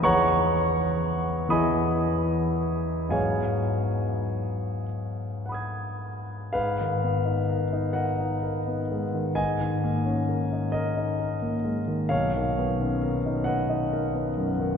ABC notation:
X:1
M:6/8
L:1/16
Q:3/8=42
K:G#m
V:1 name="Grand piano"
[cfac']6 [dgbd']6 | [Gc^eg]6 z2 [fbd'g']4 | [B^e]6 [df]6 | [dg]6 [Ad]6 |
[c^e]6 [df]6 |]
V:2 name="Grand piano"
[E,,E,B,EG]6 [E,,E,B,EG]6 | [G,,F,B,D]12 | G,, D, B, D A D A D A B, G, D, | G,, D, A, C A D2 D A A, G, D, |
B,,, D, B, C A D B D A B, F,, D, |]